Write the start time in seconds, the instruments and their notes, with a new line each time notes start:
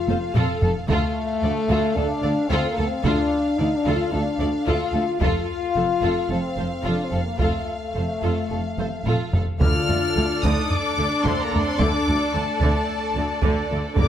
Already playing: french horn section F4, violin section F5
0.08 double bass section F1, cello section F2, viola section A4, violin section C5, taiko high
0.35 double bass section F1, cello section F2, violin section F4, viola section A4, french horn section A4, taiko low-mid
0.62 double bass section F1, cello section F2, viola section A4, violin section A4, taiko low
0.89 cello section D2, double bass section D2, french horn section A3, violin section F4 F5, viola section A4, taiko
1.43 double bass section D2, cello section D2, viola section A4, violin section D5
1.69 cello section D2, double bass section D2, violin section F4, viola section A4
1.96 cello section D2, double bass section D2, french horn section D4, viola section A4, violin section A4
2.23 double bass section D2, cello section D2, viola section A4, violin section D5
2.48 double bass section D2, cello section D2, french horn section C4, violin section F4, viola section A4
2.70 french horn section A#3
2.77 double bass section D2, cello section D2, viola section A4, violin section A4
2.86 french horn section C4
3.04 double bass section D2, cello section D2, french horn section D4, violin section F4, viola section A4, taiko
3.57 double bass section D2, cello section D2, french horn section D#4, viola section A4, violin section D5
3.76 french horn section D4
3.86 cello section D2, double bass section D2, violin section F4, viola section A4
3.96 french horn section F4
4.12 cello section D2, double bass section D2, french horn section D4, violin section A4, viola section A4
4.40 double bass section D2, cello section D2, viola section A4, violin section D5
4.66 double bass section D2, cello section D2, violin section F4, french horn section F4, viola section A4
4.94 double bass section D2, cello section D2, violin section A4, viola section A4
5.21 double bass section F1, cello section F2, violin section F4 F5, french horn section F4, viola section A4, taiko
5.76 double bass section F1, cello section F2, viola section A4, violin section C5
6.02 double bass section F1, cello section F2, violin section F4, viola section A4
6.30 double bass section F1, cello section F2, french horn section C4, violin section A4, viola section A4
6.57 double bass section F1, cello section F2, viola section A4, violin section C5
6.83 double bass section F1, cello section F2, french horn section D4, violin section F4, viola section A4
7.05 french horn section C4
7.11 double bass section F1, cello section F2, violin section A4, viola section A4
7.23 french horn section A#3
7.38 double bass section F1, cello section F2, violin section F4, viola section A4, taiko
7.42 french horn section A3
7.94 double bass section F1, cello section F2, viola section A4, violin section C5
8.22 double bass section F1, cello section F2, violin section F4, viola section A4
8.51 double bass section F1, cello section F2, violin section A4, viola section A4
8.78 double bass section F1, cello section F2, viola section A4, violin section C5, taiko mid
9.05 double bass section F1, cello section F2, violin section F4, viola section A4, taiko low-mid
9.33 double bass section F1, cello section F2, violin section A4, viola section A4, taiko low
9.60 double bass section D2, cello section D2, timpani D3, viola section D3 D4, french horn section F4, violin section A4 D5 F6, taiko
9.88 double bass section D2, cello section D2, viola section D3, taiko low
10.16 cello section D2, double bass section D2, viola section D3
10.43 double bass section D2, cello section D2, viola section D3, french horn section D#4, violin section D#6, taiko
10.70 violin section D6, taiko low
10.75 french horn section D4
10.98 double bass section D2, cello section D2, viola section D3
11.25 cello section D2, double bass section D2, viola section D3, french horn section C4, violin section C6, taiko
11.42 french horn section A#3, violin section A#5
11.53 double bass section D2, cello section D2, viola section D3, taiko low
11.62 french horn section C4, violin section C6
11.79 double bass section D2, cello section D2, viola section D3, french horn section D4, violin section D6, taiko
12.07 double bass section D2, cello section D2, viola section D3
12.34 double bass section D2, cello section D2, viola section D3, french horn section A3, violin section A5
12.62 double bass section D2, cello section D2, viola section D3, taiko
13.16 double bass section D2, cello section D2, viola section D3
13.43 double bass section D2, cello section D2, viola section D3, taiko
13.71 double bass section D2, cello section D2, viola section D3
13.96 double bass section G1, cello section G2, timpani G2, viola section D3 D4, french horn section D4, violin section A#4 D5 D6, taiko